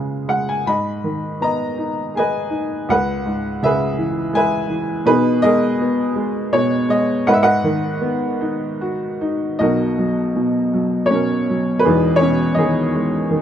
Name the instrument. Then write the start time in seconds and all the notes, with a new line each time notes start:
upright piano
Already playing: C#3 G#3 F4 G#4 B4 F5
0.28 G#3 F#5
0.49 G#5
0.66 G#2 D#5 B5
1.04 D#3
1.41 B3 D#5 A#5
1.78 D#4
2.15 G#4 B4 D#5 G#5
2.50 D#4
2.89 C#2 B4 F#5
3.26 G#2
3.63 C#3 G#4 B4 E5
3.97 E3
4.33 G#3 B4 E5 G#5
4.69 E3
5.05 B2 D#4 G#4 B4
5.42 G#3 G#4 A#4 D#5
5.81 B3
6.16 G#3
6.53 B2 C#5
6.89 G#3 D#5
7.27 G#2 B4 D#5 F#5
7.34 E5
7.43 B4 D#5 F#5
7.64 D#3
8.01 B3
8.41 D#4
8.81 F#4
9.21 D#4
9.59 B1 B2 D#4 F#4 A#4 D#5
9.98 F#3
10.36 B2
10.74 F#3
11.06 C#5
11.10 B2 C#4 A#4
11.49 F#3
11.79 B4
11.84 E1 E2 B3 D#4 G#4
12.16 C#5
12.21 B2 C#4
12.54 D#3 D#4 G#4 D#5
12.94 G#3
13.30 D#3